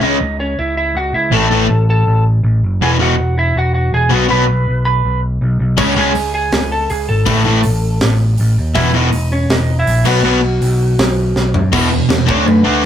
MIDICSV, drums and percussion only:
0, 0, Header, 1, 2, 480
1, 0, Start_track
1, 0, Tempo, 371517
1, 1705, Time_signature, 4, 2, 24, 8
1, 16607, End_track
2, 0, Start_track
2, 0, Title_t, "Drums"
2, 7466, Note_on_c, 9, 36, 115
2, 7471, Note_on_c, 9, 49, 103
2, 7595, Note_off_c, 9, 36, 0
2, 7600, Note_off_c, 9, 49, 0
2, 7946, Note_on_c, 9, 46, 65
2, 8075, Note_off_c, 9, 46, 0
2, 8425, Note_on_c, 9, 46, 54
2, 8431, Note_on_c, 9, 38, 87
2, 8554, Note_off_c, 9, 46, 0
2, 8561, Note_off_c, 9, 38, 0
2, 8910, Note_on_c, 9, 46, 60
2, 9040, Note_off_c, 9, 46, 0
2, 9381, Note_on_c, 9, 46, 66
2, 9387, Note_on_c, 9, 36, 116
2, 9510, Note_off_c, 9, 46, 0
2, 9516, Note_off_c, 9, 36, 0
2, 9861, Note_on_c, 9, 46, 69
2, 9991, Note_off_c, 9, 46, 0
2, 10344, Note_on_c, 9, 46, 57
2, 10351, Note_on_c, 9, 38, 107
2, 10473, Note_off_c, 9, 46, 0
2, 10480, Note_off_c, 9, 38, 0
2, 10821, Note_on_c, 9, 46, 61
2, 10950, Note_off_c, 9, 46, 0
2, 11303, Note_on_c, 9, 46, 57
2, 11312, Note_on_c, 9, 36, 112
2, 11433, Note_off_c, 9, 46, 0
2, 11441, Note_off_c, 9, 36, 0
2, 11789, Note_on_c, 9, 46, 66
2, 11918, Note_off_c, 9, 46, 0
2, 12272, Note_on_c, 9, 46, 58
2, 12278, Note_on_c, 9, 38, 103
2, 12401, Note_off_c, 9, 46, 0
2, 12407, Note_off_c, 9, 38, 0
2, 12754, Note_on_c, 9, 46, 63
2, 12884, Note_off_c, 9, 46, 0
2, 12984, Note_on_c, 9, 57, 96
2, 13114, Note_off_c, 9, 57, 0
2, 13718, Note_on_c, 9, 46, 69
2, 13847, Note_off_c, 9, 46, 0
2, 14196, Note_on_c, 9, 46, 52
2, 14203, Note_on_c, 9, 38, 101
2, 14325, Note_off_c, 9, 46, 0
2, 14332, Note_off_c, 9, 38, 0
2, 14678, Note_on_c, 9, 38, 61
2, 14807, Note_off_c, 9, 38, 0
2, 14913, Note_on_c, 9, 43, 103
2, 15043, Note_off_c, 9, 43, 0
2, 15150, Note_on_c, 9, 49, 118
2, 15150, Note_on_c, 9, 57, 54
2, 15155, Note_on_c, 9, 36, 105
2, 15279, Note_off_c, 9, 49, 0
2, 15279, Note_off_c, 9, 57, 0
2, 15284, Note_off_c, 9, 36, 0
2, 15632, Note_on_c, 9, 57, 62
2, 15638, Note_on_c, 9, 38, 127
2, 15761, Note_off_c, 9, 57, 0
2, 15768, Note_off_c, 9, 38, 0
2, 15874, Note_on_c, 9, 36, 105
2, 16003, Note_off_c, 9, 36, 0
2, 16117, Note_on_c, 9, 57, 50
2, 16246, Note_off_c, 9, 57, 0
2, 16607, End_track
0, 0, End_of_file